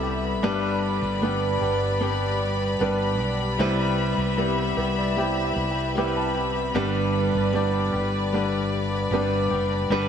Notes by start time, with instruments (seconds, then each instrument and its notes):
Already playing: fretless electric bass C2, grand piano G3 C4 E4 A4 D5, string section G3 B4 E5 B5
0.04 clean electric guitar B3 E4 G4
0.42 fretless electric bass G1, clean electric guitar G2 D3 G3 B3 D4 G4, grand piano G2 G3 B3 D4 B4, string section B4 D5
1.02 fretless electric bass G1
1.21 clean electric guitar G3 B3 D4 G4, grand piano G3 B3 D4 B4
1.61 fretless electric bass G1, clean electric guitar G3 B3 D4 G4
2.00 grand piano G3 B3 D4 B4, clean electric guitar G3 B3 D4 G4
2.79 fretless electric bass G1, clean electric guitar G3 B3 D4 G4, grand piano G3 B3 D4 B4
3.19 fretless electric bass B1, clean electric guitar G3 B3 D4 G4
3.58 fretless electric bass C2, clean electric guitar C3 G3 B3 E4 G4, grand piano C3 G3 C4 E4 B4, string section B4 E5
4.18 fretless electric bass C2
4.37 clean electric guitar G3 B3 E4 G4, grand piano G3 C4 E4 B4
4.77 fretless electric bass C2, clean electric guitar B3 E4 G4, grand piano B4
4.98 grand piano D5
5.16 clean electric guitar G3 B3 E4 G4, grand piano G3 C4 E4 G4 E5
5.44 grand piano E5
5.56 fretless electric bass C2
5.71 grand piano G5
5.95 clean electric guitar G3 B3 E4 G4, grand piano G3 C4 E4 B4 G5
6.16 grand piano A5
6.35 clean electric guitar B3 E4 G4
6.74 fretless electric bass G1, clean electric guitar G2 D3 G3 B3 D4 G4, grand piano G2 G3 B3 D4 B4, string section B4 D5
7.35 fretless electric bass G1
7.53 clean electric guitar G3 B3 D4 G4, grand piano G3 B3 D4 D5
7.93 fretless electric bass G1, clean electric guitar G3 B3 D4 G4
8.32 clean electric guitar G3 B3 D4 G4, grand piano G3 B3 D4 B4
9.11 fretless electric bass G1, clean electric guitar G3 B3 D4 G4, grand piano G3 B3 D4 B4
9.51 fretless electric bass F#1, clean electric guitar G3 B3 D4 G4
9.90 fretless electric bass G1, clean electric guitar G2 D3 G3 B3 D4 G4, grand piano G2 G3 B3 D4 B4, string section B4 B5